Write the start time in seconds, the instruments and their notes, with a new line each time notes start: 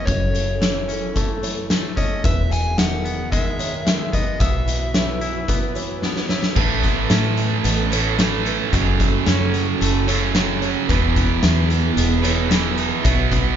0.05 fingered electric bass F#1, clean electric guitar F#2, string section F#3 E4 A4, overdriven electric guitar C#5, felt piano D#5, kick, closed hi-hat
0.34 clean electric guitar C#3, closed hi-hat
0.61 clean electric guitar E3, felt piano C#5, snare, closed hi-hat
0.88 clean electric guitar C#4, closed hi-hat
1.15 clean electric guitar A3, felt piano A4, kick, closed hi-hat
1.42 clean electric guitar E3, felt piano C#5, closed hi-hat
1.70 clean electric guitar A3, snare, closed hi-hat
1.97 clean electric guitar C#4, felt piano C#5, overdriven electric guitar D#5, kick, closed hi-hat
2.24 fingered electric bass E1, clean electric guitar E2, string section D#3 G#4, felt piano B4, overdriven electric guitar E5, kick, closed hi-hat
2.50 clean electric guitar B2, overdriven electric guitar G#5, closed hi-hat
2.78 clean electric guitar D#3, felt piano E5, overdriven electric guitar F#5, snare, closed hi-hat
3.05 clean electric guitar B3, closed hi-hat
3.32 clean electric guitar G#3, felt piano D#5, overdriven electric guitar E5, kick, closed hi-hat
3.59 clean electric guitar D#3, felt piano C#5, closed hi-hat
3.85 clean electric guitar G#3, snare, closed hi-hat
4.12 clean electric guitar B3, felt piano B4, overdriven electric guitar D#5, kick, closed hi-hat
4.39 fingered electric bass B1, clean electric guitar B2, string section F#3 E4 B4, overdriven electric guitar E5, felt piano D#6, kick, closed hi-hat
4.67 clean electric guitar E3, closed hi-hat
4.94 clean electric guitar E3, felt piano C#5, snare, closed hi-hat
5.21 clean electric guitar E4, closed hi-hat
5.48 clean electric guitar B3, felt piano B4, kick, closed hi-hat
5.75 clean electric guitar E3, felt piano C#5, closed hi-hat
6.02 clean electric guitar B3, snare
6.16 snare
6.29 clean electric guitar E4, felt piano C#5, snare
6.43 snare
6.55 fingered electric bass A1, distorted electric guitar A2 E3 A3, clean electric guitar A2, string section A3 C#4 B4, felt piano B4, kick, crash
6.83 clean electric guitar B3, kick, closed hi-hat
7.10 fingered electric bass A2, clean electric guitar C#4, felt piano E5, snare, closed hi-hat
7.37 clean electric guitar E3, closed hi-hat
7.64 fingered electric bass A1, clean electric guitar B3, felt piano D#5, closed hi-hat
7.91 distorted electric guitar A2 E3 A3, clean electric guitar C#4, felt piano C#5, closed hi-hat
8.17 distorted electric guitar A2 E3 A3, clean electric guitar E3, snare, closed hi-hat
8.46 clean electric guitar C#4, felt piano B4, closed hi-hat
8.71 fingered electric bass F#1, distorted electric guitar F#2 C#3 F#3, clean electric guitar F#3, string section F#3 E4 A4, felt piano D#5, kick, closed hi-hat
9.00 clean electric guitar A3, kick, closed hi-hat
9.26 fingered electric bass F#2, clean electric guitar C#4, felt piano C#5, snare, closed hi-hat
9.54 clean electric guitar F#3, closed hi-hat
9.80 fingered electric bass F#1, clean electric guitar A3, felt piano A4, closed hi-hat
10.07 distorted electric guitar F#2 C#3 F#3, clean electric guitar C#4, felt piano C#5, closed hi-hat
10.34 distorted electric guitar F#2 C#3 F#3, clean electric guitar F#3, snare, closed hi-hat
10.62 clean electric guitar C#4, felt piano C#5, closed hi-hat
10.88 fingered electric bass E1, distorted electric guitar E2 B2, clean electric guitar E2, string section E3 B3 G#4, felt piano B4, kick, closed hi-hat
10.92 distorted electric guitar E3
11.16 clean electric guitar B3, kick, closed hi-hat
11.42 fingered electric bass E2, felt piano E5, snare, closed hi-hat
11.70 clean electric guitar E3, closed hi-hat
11.96 fingered electric bass E1, clean electric guitar B3, felt piano D#5, closed hi-hat
12.22 distorted electric guitar B2 E3, clean electric guitar D#4, felt piano C#5, closed hi-hat
12.26 distorted electric guitar E2
12.50 distorted electric guitar E2 B2 E3, clean electric guitar E3, snare, closed hi-hat
12.77 clean electric guitar D#4, felt piano B4, closed hi-hat
13.03 fingered electric bass B1, distorted electric guitar B2 F#3, clean electric guitar B2, string section F#3 E4 B4, felt piano E5, kick, closed hi-hat
13.07 distorted electric guitar B3
13.31 clean electric guitar B3, kick, closed hi-hat